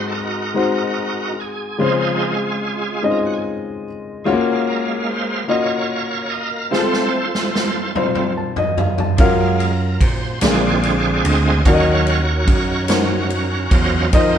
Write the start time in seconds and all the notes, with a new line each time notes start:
Already playing: G#2 G#3 C4 D#4 F#4 C5
0.07 A4
0.14 D#4 F#4 A#4
0.54 G#3 C4 D#4 F#4 C5
1.40 G#4
1.78 C#3 F3 G#3 C4 C#4 D#4 F4 G#4 C5
3.03 G#3 C4 C#4 D#4 D#5
3.10 F4 A#4
3.18 G#4
3.25 F#4
3.34 G#4
4.24 G#3 A#3 C#4 F4 F#4 C#5 F5
4.32 A#3
4.67 A#4
5.09 C5
5.48 A#3 C#4 F4 F#4 A#4 C#5 D#5 F5
6.30 D#5
6.71 A3 C4 F4 G#4 A4 C5, snare
6.79 A4
6.93 snare
7.35 snare
7.56 snare
7.95 A3 C4 F4 C5, mid tom
8.15 mid tom
8.37 C5 A5
8.56 D#5, floor tom
8.78 F5, floor tom
8.98 A5, floor tom
9.17 F#2 G#3 A#3 C#4 F4 F#4 A#4 F5, kick, ride
9.59 A#4, ride
10.01 A#2 C5, kick, ride
10.41 A#1 A#2 D3 G#3 C4 D4 F4 G#4 A#4 D5 F5, snare, clap, ride
10.83 ride
11.24 D2 D#5, ride
11.65 D#2 D#3 F#3 C#4 D#4 F#4 A#4 C#5 D5 F5, kick, ride
11.73 D#5
12.06 ride
12.47 F#2, kick, ride
12.88 C#4 D#4 F#4 A#4 C5, snare, clap, ride
13.30 ride
13.71 E2 F#3 C#4 F4 A#4 C5 D#5, kick, ride
14.11 F2 D#3 A#3 C4 D#4 F4 A#4 D#5, kick, ride